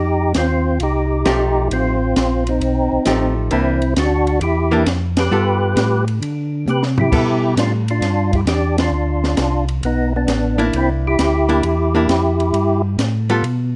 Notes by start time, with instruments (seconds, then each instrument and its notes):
Already playing: tonewheel organ F2 D#4 G4
0.34 tonewheel organ D#2 C4 F4, snare, hi-hat pedal, ride
0.80 tonewheel organ C2 D#4 G4, ride
1.25 tonewheel organ B1, hollow-body jazz guitar F3 A3 D#4 G4, snare, hi-hat pedal, ride
1.71 tonewheel organ A1 C4 F4, ride
2.16 tonewheel organ A#1, snare, hi-hat pedal, ride
2.47 tonewheel organ C4 D#4, ride
2.61 tonewheel organ B1, ride
2.92 tonewheel organ B1
3.05 tonewheel organ A1, hollow-body jazz guitar F3 A3 D#4 G4, snare, hi-hat pedal, ride
3.51 tonewheel organ C2 C4 E4, hollow-body jazz guitar E3 A#3 D4, ride
3.82 ride
3.96 tonewheel organ D2 D4 F#4, snare, hi-hat pedal, ride
4.27 ride
4.41 tonewheel organ E2 E4 G4, ride
4.71 hollow-body jazz guitar E3 A#3 D4
4.86 tonewheel organ F2, snare, hi-hat pedal, ride
5.17 tonewheel organ G4 B4, snare, ride
5.31 tonewheel organ G2, hollow-body jazz guitar G3 B3 F4 A4
5.76 tonewheel organ A2, snare, hi-hat pedal, ride
6.08 ride
6.21 tonewheel organ D3, ride
6.66 tonewheel organ C3 G4 B4, hi-hat pedal, high tom
6.83 snare
6.98 tonewheel organ E4 G4, floor tom
7.12 tonewheel organ B2, hollow-body jazz guitar G3 B3 A4, kick, crash
7.56 tonewheel organ A2 D4 F4, snare, hi-hat pedal, ride
7.88 tonewheel organ D4 F4, ride
8.01 tonewheel organ G2, snare, ride
8.33 tonewheel organ E4 G4, kick, ride
8.46 tonewheel organ E2 D4 G4, snare, hi-hat pedal, ride
8.78 tonewheel organ D4 F4, snare, ride
8.91 tonewheel organ D2
9.24 snare
9.37 tonewheel organ C2, snare, hi-hat pedal, ride
9.68 ride
9.83 tonewheel organ B1 B3 D#4, ride
10.16 tonewheel organ B3 D4
10.27 tonewheel organ A1, snare, hi-hat pedal, ride
10.58 hollow-body jazz guitar A#3 D4 E4, tonewheel organ B3 D#4, ride
10.73 tonewheel organ C2 C4 E4, ride
11.07 tonewheel organ E4 G4
11.19 tonewheel organ D2, snare, hi-hat pedal, ride
11.49 hollow-body jazz guitar A#3 D4 E4, ride
11.63 tonewheel organ E2, ride
11.95 hollow-body jazz guitar A#3 D4 E4
12.08 tonewheel organ F2, snare, hi-hat pedal, ride
12.40 ride
12.53 tonewheel organ G2, ride
12.98 tonewheel organ A2, snare, hi-hat pedal, ride
13.30 hollow-body jazz guitar G3 B3 F4 A4, ride
13.43 tonewheel organ B2, ride